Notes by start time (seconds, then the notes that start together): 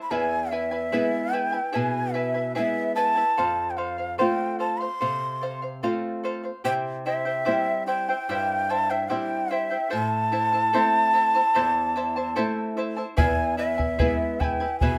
Already playing: E4 C5 A5
0.02 B5
0.11 E2 E4 G#4 B4 E5 G#5
0.51 E4 B4 E5 G#5
0.71 E4 B4 G#5
0.92 G#3 B3 E4 G#4 B4 E5 G#5
1.33 E4 B4 E5 G5 G#5
1.52 E4 B4 G#5
1.72 B2 E4 G#4 B4 E5 G#5 A5
1.78 G#5
2.14 E4 B4 E5 G#5
2.34 E4 B4 G#5
2.55 G#3 B3 E4 G#4 B4 E5 G#5
2.95 E4 B4 E5 G#5 A5
3.15 E4 B4 G#5
3.37 F2 A4 C5 F5
3.70 G5
3.77 A4 C5 F5
3.98 C5 F5
4.18 A3 C4 F4 A4 C5 F5 G5
4.59 A4 C5 F5 A5
4.79 C5 F5 C6
5.01 C3 A4 C5 F5
5.41 A4 C5 F5
5.62 C5 F5
5.83 A3 C4 F4 A4 C5 F5
6.24 A4 C5 F5
6.44 C5 F5
6.64 C3 E4 G4 C5 E5 G5
7.06 E4 C5 E5 G5
7.25 E4 C5 G5
7.45 G3 C4 E4 G4 C5 E5 G5
7.87 E4 C5 E5 G5
8.09 E4 C5 G5
8.29 G2 E4 G4 C5 E5 G5
8.69 E4 C5 E5 G5 A5
8.89 E4 C5 E5 G5
9.10 G3 C4 E4 G4 C5 E5 G5
9.51 E4 C5 E5 G5
9.71 E4 C5 G5
9.90 A2 E4 A4 C5 E5 A5
9.94 A5
10.32 E4 C5 E5 A5
10.53 E4 C5 A5
10.73 A3 C4 E4 A4 C5 E5 A5
11.14 E4 C5 E5 A5
11.34 E4 C5 A5
11.55 E2 E4 A4 C5 E5 A5
11.96 E4 C5 E5 A5
12.16 E4 C5 A5
12.36 A3 C4 E4 A4 C5 E5 A5
12.77 E4 C5 E5 A5
12.97 E4 C5 A5
13.17 E2 E4 G#4 B4 E5 G#5, bombo low
13.57 E4 B4 E5 G#5
13.78 E4 B4 G#5, bombo low
13.99 G#3 B3 E4 G#4 B4 E5 G#5, bombo low
14.40 E4 B4 E5 G#5, bombo low
14.44 G5
14.60 E4 B4 G#5
14.80 B2 E4 G#4 B4 E5 G#5, bombo low